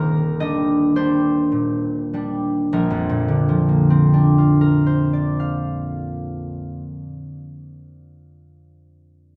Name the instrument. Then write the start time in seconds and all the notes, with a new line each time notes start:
harp
Already playing: D#1 D#2 D#3 G3 A#3 D#4 G4 A#4 C5 D#5
0.40 G3 D4 D#5
0.96 G3 D4 C5
1.52 A#2
2.13 G3 D4
2.73 A#1 A#4
2.90 F2
3.09 A#2
3.28 D3
3.49 F3
3.69 A#3
3.90 C4
4.13 D4
4.38 F4
4.61 A#4
4.86 C5
5.13 D5
5.40 F5